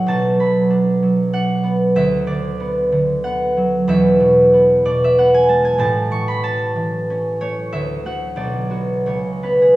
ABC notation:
X:1
M:3/4
L:1/16
Q:1/4=93
K:Bdor
V:1 name="Harp"
[fa]2 b6 f4 | e2 d6 f4 | e6 d e f g a g | a2 c' b a6 c2 |
e2 f2 d4 c2 B G |]
V:2 name="Harp" clef=bass
[B,,,B,,F,]2 F,2 D2 F,2 D2 B,2 | D,,2 D,2 B,2 D,2 B,2 F,2 | [E,,,E,,]2 B,,2 B,2 B,,2 B,2 G,2 | [A,,,A,,]2 E,2 C2 E,2 C2 A,2 |
D,,2 [A,F]2 B,,,2 [B,F]2 C,,2 [B,C]2 |]